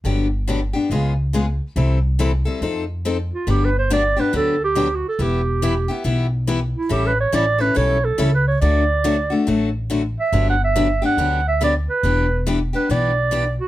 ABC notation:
X:1
M:4/4
L:1/8
Q:"Swing" 1/4=140
K:G
V:1 name="Clarinet"
z8 | z6 z =F | (3G B c d B A G- (3G F A | G4 z3 E |
(3G B ^c d B c A- (3A B c | d4 z3 e- | (3e f e- e f2 e d B- | B2 z B d3 F |]
V:2 name="Steel-string acoustic guitar"
[D,F,B,DG] z [D,F,B,DG] [B,DG] [^C,^G,B,^E^G] z [C,G,B,EG] z | [C,E,G,CEA] z [C,E,G,CEA] [G,CEA] [=F,C_EA] z [F,CEA] z | [D,F,B,DG] z [D,F,B,DG] [B,DG] [D,F,B,DG] z [D,F,B,DG] z | [E,B,EG] z [E,B,EG] [B,EG] [E,B,EG] z [E,B,EG] z |
[E,G,^CEA] z [E,G,CEA] [CEA] [E,G,CEA] z [E,G,CEA] z | [D,F,A,DF] z [D,F,A,DF] [A,DF] [D,F,A,DF] z [D,F,A,DF] z | [D,F,B,DG] z [D,F,B,DG] [B,DG] [D,F,B,DG] z [D,F,B,DG] z | [E,B,DG] z [E,B,DG] [B,DG] [E,B,DG] z [E,B,DG] z |]
V:3 name="Upright bass" clef=bass
G,,,4 ^C,,4 | C,,4 =F,,4 | G,,,4 D,,4 | E,,,4 B,,,4 |
A,,,2 A,,,2 B,,,2 ^C,,2 | D,,4 A,,,4 | G,,,4 D,,4 | E,,,4 B,,,4 |]